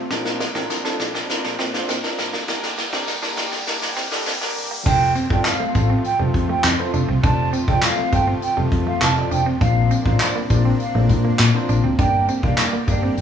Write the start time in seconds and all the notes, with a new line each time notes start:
Already playing: C3 F3, riser
0.11 A#1 A#3 C4 D4 F4 A#4, kick, snare, closed hi-hat
0.25 muted clean electric guitar stroke, snare
0.40 A#3, snare, closed hi-hat, tambourine
0.55 A1 C4 D4 F4 A#4, kick, snare
0.70 snare, closed hi-hat, tambourine
0.85 C4 D4 F4 A4, snare
1.00 A#1, muted clean electric guitar stroke, kick, snare, closed hi-hat, tambourine
1.15 D4, snare
1.29 C4 D4 F4 A#4, snare, closed hi-hat, tambourine
1.44 A#1, snare
1.59 A#2 C4, kick, snare, closed hi-hat
1.74 C4 D4 F4 C5, snare
1.89 A#2 C4, snare, closed hi-hat, tambourine
2.03 C4 D4 F4 A#4, snare
2.19 A#1, muted clean electric guitar stroke, snare, closed hi-hat, tambourine
2.33 D2 A#3, snare
2.48 G1 D3 G3 A#3 D4 G4 A#4, kick, snare, closed hi-hat
2.63 muted clean electric guitar stroke, snare
2.78 A#3, snare, closed hi-hat, tambourine
2.92 F1 A#3 C4 D4 G4 A#4, kick, snare
3.08 snare, closed hi-hat, tambourine
3.22 A#3 D4 G4 A#4, snare
3.37 G1, muted clean electric guitar stroke, kick, snare, closed hi-hat, tambourine
3.52 D4, snare
3.67 A#3 D4 G4 A#4, snare, closed hi-hat, tambourine
3.82 G1, snare
3.97 G2 C4, kick, snare, closed hi-hat
4.11 A#3 D4 G4 A4, snare
4.26 G1 C4, snare, closed hi-hat, tambourine
4.41 A#3 D4 G4 A#4, snare
4.56 C2, muted clean electric guitar stroke, open hi-hat, tambourine
4.71 A#3
4.85 F1 C3 F3 A3 C4 D4 F4 A4 C5 G5, kick, crash, tambourine
5.15 C4, closed hi-hat, tambourine
5.30 G1 A3 C4 F4 A4 D5 G5, muted clean electric guitar stroke, kick
5.45 F5, snare, clap, closed hi-hat, tambourine
5.60 A3
5.75 A1 A3 C4 F4 A4 C5 F5, muted clean electric guitar stroke, kick, closed hi-hat, tambourine
5.90 C4
6.05 G5, closed hi-hat, tambourine
6.19 F1 G3 A3 C4 F4 A4 C5
6.34 F2, muted clean electric guitar stroke, kick, closed hi-hat
6.49 A3 G5
6.64 F2, muted clean electric guitar stroke, snare, clap, closed hi-hat, tambourine
6.79 A3 C4 F4 A4 C5
6.94 F1 D4, closed hi-hat, tambourine
7.09 C2 C4
7.23 F1 A3 C4 D4 F4 A4 D5 A5, kick, closed hi-hat, tambourine
7.53 C4, closed hi-hat, tambourine
7.68 F1 A3 C4 F4 A4 D5 G5, muted clean electric guitar stroke, kick
7.82 F5, snare, clap, closed hi-hat, tambourine
7.98 A3
8.12 G1 A3 C4 F4 A4 C5 G5, muted clean electric guitar stroke, kick, closed hi-hat, tambourine
8.28 C4
8.42 G5, closed hi-hat, tambourine
8.57 F1 G3 A3 C4 F4 A4 C5
8.72 F2, muted clean electric guitar stroke, kick, closed hi-hat
8.87 A3 F5
9.01 F1 A5, muted clean electric guitar stroke, snare, clap, closed hi-hat, tambourine
9.16 A3 C4 F4 A4 D5
9.31 F1 D4 G5, closed hi-hat, tambourine
9.46 C4
9.61 A#1 A#3 C4 D4 F4 A#4 C5 F5, kick, closed hi-hat, tambourine
9.91 C4, closed hi-hat, tambourine
10.05 A1 C4 D4 F4 A#4 C5 F5, muted clean electric guitar stroke, kick
10.20 D5, snare, clap, closed hi-hat, tambourine
10.36 A#3
10.50 A#1 C4 D4 F4 A#4 C5 D5, muted clean electric guitar stroke, kick, closed hi-hat, tambourine
10.65 C4
10.80 F5, closed hi-hat, tambourine
10.95 A#1 A3 C4 D4 F4 A#4 C5
11.09 A#2, muted clean electric guitar stroke, kick, closed hi-hat, tambourine
11.24 A#3 F5
11.39 A#2, muted clean electric guitar stroke, snare, clap, closed hi-hat, tambourine
11.54 C4 D4 F4 A#4 C5
11.69 A#1 D4, closed hi-hat, tambourine
11.84 D2 C4
11.98 G1 D3 G3 A#3 D4 G4 A#4 D5 G5, kick, closed hi-hat, tambourine
12.29 C4, closed hi-hat, tambourine
12.43 F1 A#3 D4 G4 A#4 D5 F5, muted clean electric guitar stroke, kick
12.57 D5, snare, clap, closed hi-hat, tambourine
12.73 A#3
12.87 G1 A#3 D4 G4 A#4 D5 F5, muted clean electric guitar stroke, kick, closed hi-hat, tambourine
13.03 C4
13.17 G1, closed hi-hat, tambourine